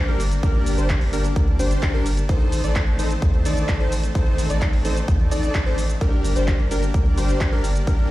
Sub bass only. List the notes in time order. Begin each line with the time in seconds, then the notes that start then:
0.20 G1
0.66 G1
0.78 G1
1.13 G1
1.36 D2
1.59 G1
2.06 G1
2.52 A1
2.64 A1
2.99 A1
3.22 D#2
3.45 A1
3.92 A1
4.38 A1
4.50 A1
4.85 A1
5.08 D#2
5.32 A1
5.78 A1
6.25 G1
6.36 G1
6.71 G1
6.94 D2
7.18 G1
7.64 G1